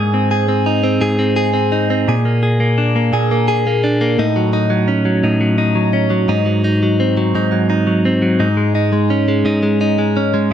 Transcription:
clean electric guitar
Already playing: G#2 G#4
0.14 C4
0.31 G#4
0.48 C4
0.66 D#4
0.83 C4
1.01 G#2 G#4
1.19 C4
1.36 G#4
1.53 C4
1.72 D#4
1.90 C4
2.08 A#2 G#4
2.25 A#3
2.43 G#4
2.60 A#3
2.78 D4
2.96 A#3
3.13 A#2 G#4
3.31 A#3
3.48 G#4
3.67 A#3
3.84 D4
4.01 A#3
4.19 A2 D#4
4.36 F#3
4.53 D#4
4.70 F#3
4.88 C#4
5.05 F#3
5.23 A2 D#4
5.41 F#3
5.58 D#4
5.75 F#3
5.93 C#4
6.10 F#3
6.28 G#2 D#4
6.46 F#3
6.64 D#4
6.83 F#3
7.00 C4
7.17 F#3
7.35 G#2 D#4
7.52 F#3
7.70 D#4
7.87 F#3
8.05 C4
8.22 F#3
8.39 G#2 D#4
8.57 G#3
8.75 D#4
8.93 G#3
9.10 C#4
9.28 G#3
9.45 G#2 D#4
9.63 G#3
9.81 D#4
9.99 G#3
10.17 C#4
10.34 G#3

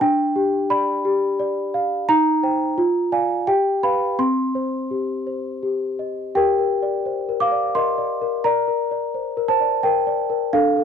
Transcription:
celesta
0.01 D4 G5
0.36 G4
0.70 D5 B5
1.05 G4
1.40 D5
1.74 F5
2.09 D#4 A#5
2.43 C5 G5
2.78 F4
3.12 D5 F5 G#5
3.47 G4 G5
3.83 B4 F5 B5
4.19 C4 C6
4.55 C5
4.91 G4
5.27 C5
5.63 G4
5.99 D#5
6.35 G4 A#4 G5
6.59 A#4
6.82 D5
7.06 C5
7.29 A#4
7.40 F5 D6
7.52 D5
7.75 A#4 D#5 C6
7.98 D5
8.21 A#4
8.44 A#4 D5 A#5
8.68 A#4
8.91 D5
9.14 C5
9.37 A#4
9.48 C5 A5
9.61 D5
9.83 A#4 G5
10.07 D5
10.30 A#4
10.53 D4 A4 F5
10.77 A4

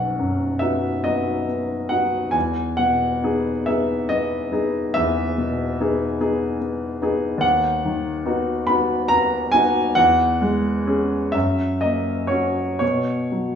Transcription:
grand piano
Already playing: B1 B3 D#4 F#4 F#5 G#5
0.19 F#2
0.59 B3 D#4 F#4 E5
1.04 B3 D#4 F#4 D#5
1.48 B3
1.89 B3 D#4 F#4 F#5
2.31 E2 G#5
2.77 B2 F#5
3.23 B3 D#4 G#4
3.66 B3 D#4 G#4 E5
4.09 B3 D#5
4.52 B3 D#4 G#4
4.94 E2 E5
5.38 B2
5.80 B3 D#4 G#4
6.20 B3 D#4 G#4
6.61 B3
7.02 B3 D#4 G#4
7.38 D#2 F#5
7.85 D#3
8.25 B3 D#4 F#4
8.67 B3 D#4 F#4 B5
9.08 B3 A#5
9.52 B3 D#4 F#4 G#5
9.95 E2 F#5
10.41 G#3
10.87 C#4 G#4
11.32 F#2 E5
11.81 A#3 D#5
12.27 C#4 F#4 C#5
12.79 B2 C#5
13.32 F#3

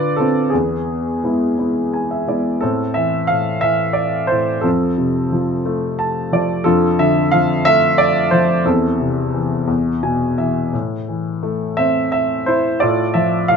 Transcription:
grand piano
Already playing: D3 D4 F4 B4 D5
0.16 C4 D4 F4 A4 B4
0.50 E2 G#4
0.55 B3
1.23 G#3 B3 E4
1.58 G#3 B3 E4
1.94 G#5
2.11 E5
2.28 G#3 B3 E4 D5
2.61 A2 C4 A4
2.94 E3 E5
3.27 A2 F5
3.61 E3 E5
3.93 D5
4.27 C5
4.31 A2
4.61 F2 C4 F4 A4
4.98 C3
5.32 F3
5.65 A3
5.99 A5
6.32 F3 D5
6.64 F2 D4 F4 A4
6.99 D3 E5
7.31 F3 F5
7.65 A3 E5
7.98 D5
8.31 F3 C5
8.65 E2 C4 E4 A4
9.00 C3
9.34 E3
9.67 E2
10.03 B2 G#5
10.38 E3 E5
10.73 A2
11.09 E3
11.43 A3
11.77 C4 E5
12.12 E5
12.46 E4 C5
12.80 A2 F4 A4 D5
13.14 F3 E5
13.48 A2 F5

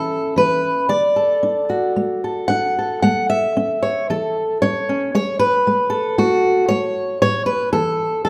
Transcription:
steel-string acoustic guitar
Already playing: E3 C#4 E4 A4
0.36 E3 B4
0.89 D3 D5
1.16 A4
1.43 D4
1.70 F#4
1.96 A3
2.24 A4
2.48 D4 F#5
2.79 A4
3.02 A3 F#5
3.30 E5
3.57 C#4
3.83 C#5
4.10 E3 A4
4.62 C#4 C#5
4.89 C#4
5.15 A3 C#5
5.39 B4
5.67 A3
5.90 A4
6.18 A3 F#4
6.68 A3 C#5
7.22 A2 C#5
7.46 B4
7.73 E3 A4
8.25 E3 A4

